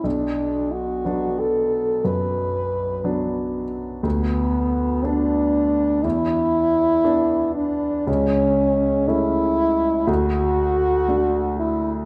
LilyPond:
<<
  \new Staff \with { instrumentName = "French horn" } { \time 4/4 \key b \minor \tempo 4 = 60 \tuplet 3/2 { d'4 fis'8~ fis'8 a'4 } b'4. r8 | b4 d'4 e'4. d'8 | cis'4 e'4 fis'4. e'8 | }
  \new Staff \with { instrumentName = "Grand piano" } { \time 4/4 \key b \minor b,,4 <fis b d'>4 fis,4 <fis b d'>4 | d,4 <b d'>4 e,4 <b d'>4 | cis,4 <a cis'>4 d,4 <a d'>4 | }
>>